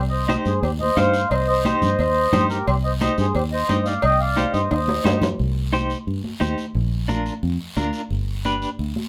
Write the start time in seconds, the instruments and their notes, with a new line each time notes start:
Already playing: fingered electric bass C2
0.09 accordion C5 D#5
0.27 clean electric guitar D#4 G4 C5, accordion C5 D#5, cowbell, high conga, short guiro
0.44 fingered electric bass G2, accordion G#4 C5, short guiro
0.61 fingered electric bass D#2, accordion G4 C5, cowbell, long guiro
0.79 accordion C5 D#5, high conga
0.97 fingered electric bass G2, clean electric guitar D#4 G4 C5, accordion C5 F5, cowbell, high conga, short guiro
1.14 short guiro
1.29 fingered electric bass C2, accordion C5 D#5, cowbell, long guiro
1.47 accordion C5 D#5
1.65 clean electric guitar D#4 G4 C5, cowbell, high conga, short guiro
1.82 fingered electric bass G2, low conga, short guiro
1.99 fingered electric bass D#2, cowbell, long guiro
2.33 fingered electric bass G2, clean electric guitar D#4 G4 C5, cowbell, high conga, low conga, short guiro
2.49 accordion G4 A#4, short guiro
2.66 fingered electric bass C2, accordion G4 C5, cowbell, long guiro
2.84 accordion C5 D#5
3.01 clean electric guitar D#4 G4 C5, accordion C5 D#5, cowbell, high conga, short guiro
3.18 fingered electric bass G2, accordion G#4 C5, short guiro
3.34 fingered electric bass D#2, accordion G4 C5, cowbell, long guiro
3.52 accordion C5 D#5
3.69 fingered electric bass G2, clean electric guitar D#4 G4 D#5, cowbell, high conga, short guiro
3.85 accordion D5 F5, short guiro
4.02 fingered electric bass C2, accordion D#5 G5, cowbell, long guiro
4.20 accordion D5 F5
4.36 clean electric guitar D#4 G4 C5, cowbell, high conga, short guiro
4.53 fingered electric bass G2, accordion C5 D#5, short guiro
4.71 fingered electric bass D#2, accordion C5 D#5, cowbell, high timbale, long guiro
4.88 high conga, low timbale
5.04 fingered electric bass G2, clean electric guitar D#4 G4 C5, cowbell, high conga, low timbale, short guiro
5.22 low conga, low timbale, short guiro
5.39 fingered electric bass C2, long guiro
5.73 clean electric guitar D#4 G4 C5, high conga, short guiro
5.90 short guiro
6.07 fingered electric bass G2, long guiro
6.24 high conga
6.40 fingered electric bass D#2, clean electric guitar D#4 G4 C5, high conga, short guiro
6.58 short guiro
6.75 fingered electric bass A#1, long guiro
7.08 clean electric guitar D4 F4 A#4, high conga, short guiro
7.26 short guiro
7.43 fingered electric bass F2, long guiro
7.77 fingered electric bass D2, clean electric guitar D4 F4 A#4, high conga, short guiro
7.93 short guiro
8.10 fingered electric bass G1, long guiro
8.45 clean electric guitar D4 G4 B4, high conga, short guiro
8.62 short guiro
8.79 fingered electric bass D2, long guiro
8.96 high conga